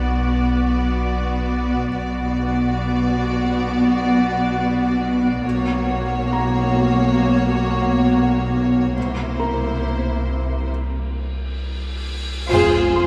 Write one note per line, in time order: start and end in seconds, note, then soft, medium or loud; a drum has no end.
0.00 1.87 B1 soft
0.00 1.87 B1 medium
0.00 1.87 B2 soft
0.00 1.87 B3 soft
0.00 1.86 F#4 soft
0.00 1.87 D5 soft
0.00 1.88 D6 soft
1.90 5.39 B1 soft
1.90 5.40 B1 medium
1.90 5.40 B2 soft
1.90 5.40 B3 soft
1.90 5.40 F#4 soft
1.90 5.40 D5 soft
5.43 8.93 B1 soft
5.43 8.98 B1 medium
5.43 8.93 B2 soft
5.43 8.93 A#3 soft
5.43 8.93 F#4 soft
5.43 8.93 C#5 soft
6.33 8.93 A#5 soft
8.96 12.50 C2 medium
8.96 10.70 C2 soft
8.96 10.70 C3 soft
8.96 10.69 A#3 soft
8.96 10.71 E4 soft
8.96 10.70 C5 soft
8.96 cymbal swell soft
9.39 10.68 A#4 soft
9.39 10.69 A#5 soft
12.49 13.07 F1 medium
12.49 13.07 F2 soft
12.49 13.07 F4 medium
12.49 13.07 G#4 medium
12.49 13.07 C5 medium
12.49 sub drop soft
12.96 13.07 C6 soft